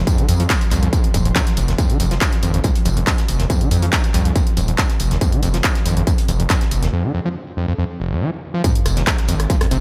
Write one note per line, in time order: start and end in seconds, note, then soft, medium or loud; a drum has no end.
0.00 6.93 F3 medium
0.07 0.20 F2 loud
0.07 kick loud
0.07 closed hi-hat medium
0.07 tambourine medium
0.18 0.27 D#3 medium
0.18 closed hi-hat medium
0.29 0.47 F2 medium
0.29 0.35 F2 medium
0.29 open hi-hat loud
0.29 tambourine medium
0.40 0.43 F3 medium
0.40 closed hi-hat soft
0.50 kick loud
0.50 snare loud
0.50 clap loud
0.50 closed hi-hat medium
0.50 tambourine loud
0.61 open hi-hat medium
0.71 0.89 C2 medium
0.71 0.81 F2 medium
0.71 clap soft
0.71 open hi-hat loud
0.71 tambourine medium
0.83 0.88 F2 loud
0.83 closed hi-hat medium
0.93 0.99 F2 loud
0.93 kick loud
0.93 closed hi-hat medium
0.93 tambourine medium
1.04 closed hi-hat medium
1.14 1.32 D#1 medium
1.14 1.18 F2 medium
1.14 kick medium
1.14 open hi-hat loud
1.14 tambourine medium
1.25 1.29 F2 medium
1.25 closed hi-hat medium
1.36 1.42 F#2 medium
1.36 kick loud
1.36 snare loud
1.36 clap loud
1.36 closed hi-hat medium
1.36 tambourine medium
1.47 snare soft
1.47 closed hi-hat medium
1.57 1.75 F1 loud
1.57 open hi-hat loud
1.57 tambourine medium
1.68 1.74 D#2 medium
1.68 snare soft
1.68 closed hi-hat medium
1.78 1.91 F2 loud
1.78 kick loud
1.78 closed hi-hat medium
1.78 tambourine medium
1.90 1.98 D#3 medium
1.90 closed hi-hat soft
2.00 2.18 F1 medium
2.00 2.06 F2 medium
2.00 open hi-hat loud
2.00 tambourine medium
2.11 2.15 F3 medium
2.11 snare soft
2.11 closed hi-hat soft
2.21 kick loud
2.21 snare loud
2.21 clap loud
2.21 closed hi-hat medium
2.21 tambourine loud
2.32 snare soft
2.32 closed hi-hat soft
2.43 2.61 G#1 medium
2.43 2.52 F2 medium
2.43 open hi-hat loud
2.43 tambourine medium
2.54 2.60 F2 loud
2.54 closed hi-hat medium
2.64 2.70 F2 loud
2.64 kick loud
2.64 closed hi-hat medium
2.64 tambourine medium
2.75 closed hi-hat medium
2.75 closed hi-hat soft
2.85 3.04 F1 loud
2.85 2.89 F2 medium
2.85 open hi-hat loud
2.85 tambourine medium
2.97 3.00 F2 medium
2.97 closed hi-hat soft
3.07 3.13 F#2 medium
3.07 kick loud
3.07 snare loud
3.07 clap loud
3.07 closed hi-hat medium
3.07 tambourine medium
3.18 snare medium
3.18 closed hi-hat medium
3.28 3.47 F1 medium
3.28 open hi-hat loud
3.28 tambourine medium
3.39 3.45 D#2 medium
3.39 snare medium
3.39 closed hi-hat medium
3.50 3.63 F2 loud
3.50 kick loud
3.50 closed hi-hat medium
3.50 tambourine medium
3.61 3.70 D#3 medium
3.61 closed hi-hat medium
3.71 3.77 F2 medium
3.71 3.89 F2 medium
3.71 open hi-hat loud
3.71 tambourine medium
3.82 3.86 F3 medium
3.82 closed hi-hat soft
3.92 kick loud
3.92 snare loud
3.92 clap loud
3.92 closed hi-hat medium
3.92 tambourine medium
4.04 open hi-hat medium
4.14 4.32 C2 medium
4.14 4.23 F2 medium
4.14 clap soft
4.14 open hi-hat loud
4.14 tambourine medium
4.25 4.31 F2 loud
4.25 closed hi-hat medium
4.36 4.42 F2 loud
4.36 kick loud
4.36 closed hi-hat medium
4.36 tambourine medium
4.47 closed hi-hat medium
4.57 4.75 D#1 medium
4.57 4.61 F2 medium
4.57 open hi-hat loud
4.57 tambourine medium
4.68 4.72 F2 medium
4.68 closed hi-hat soft
4.78 4.85 F#2 medium
4.78 kick loud
4.78 snare loud
4.78 clap loud
4.78 closed hi-hat medium
4.78 tambourine medium
4.89 snare soft
4.89 closed hi-hat medium
5.00 5.18 F1 loud
5.00 open hi-hat loud
5.00 tambourine medium
5.11 5.17 D#2 medium
5.11 snare soft
5.11 closed hi-hat medium
5.21 5.34 F2 loud
5.21 kick loud
5.21 closed hi-hat medium
5.21 tambourine medium
5.32 5.41 D#3 medium
5.32 closed hi-hat soft
5.43 5.61 F1 loud
5.43 5.49 F2 medium
5.43 open hi-hat loud
5.43 tambourine medium
5.54 5.57 F3 medium
5.54 snare soft
5.54 closed hi-hat medium
5.64 kick loud
5.64 snare loud
5.64 clap loud
5.64 closed hi-hat medium
5.64 tambourine medium
5.75 snare soft
5.75 closed hi-hat medium
5.86 6.04 G#1 medium
5.86 5.95 F2 medium
5.86 open hi-hat loud
5.86 tambourine medium
5.97 6.03 F2 loud
5.97 closed hi-hat medium
6.07 6.13 F2 loud
6.07 kick loud
6.07 closed hi-hat medium
6.07 tambourine medium
6.18 closed hi-hat medium
6.18 closed hi-hat soft
6.28 6.47 F1 loud
6.28 6.32 F2 medium
6.28 open hi-hat loud
6.28 tambourine medium
6.40 6.43 F2 medium
6.40 closed hi-hat medium
6.49 6.56 F#2 medium
6.49 kick loud
6.49 snare loud
6.49 clap loud
6.49 closed hi-hat medium
6.49 tambourine medium
6.61 snare medium
6.61 closed hi-hat medium
6.71 6.90 F1 medium
6.71 open hi-hat loud
6.71 tambourine medium
6.83 6.88 D#2 medium
6.83 snare medium
6.83 closed hi-hat medium
6.93 7.06 F2 loud
7.04 7.12 D#3 medium
7.14 7.20 F2 medium
7.25 7.29 F3 medium
7.57 7.66 F2 medium
7.68 7.74 F2 loud
7.79 7.85 F2 loud
8.00 8.13 F1 medium
8.11 8.23 F#2 medium
8.21 8.31 F3 loud
8.54 8.62 F3 medium
8.64 8.73 F2 medium
8.64 9.80 F3 medium
8.64 kick loud
8.64 closed hi-hat medium
8.64 tambourine medium
8.64 sub drop medium
8.75 closed hi-hat medium
8.86 9.04 F1 loud
8.86 cross-stick medium
8.86 open hi-hat loud
8.86 tambourine medium
8.97 9.02 D#2 medium
8.97 snare medium
8.97 closed hi-hat medium
9.06 9.13 F2 medium
9.06 kick loud
9.06 cross-stick medium
9.06 snare loud
9.06 clap loud
9.06 closed hi-hat medium
9.06 tambourine medium
9.18 snare soft
9.18 closed hi-hat medium
9.28 9.47 G#1 medium
9.28 9.35 F2 medium
9.28 open hi-hat loud
9.28 tambourine medium
9.40 cross-stick medium
9.40 closed hi-hat medium
9.50 9.56 F3 medium
9.50 kick loud
9.50 closed hi-hat medium
9.50 tambourine medium
9.61 9.67 F2 medium
9.61 cross-stick medium
9.61 closed hi-hat soft
9.61 closed hi-hat medium
9.71 9.80 F1 loud
9.71 9.77 C3 loud
9.71 open hi-hat loud
9.71 tambourine medium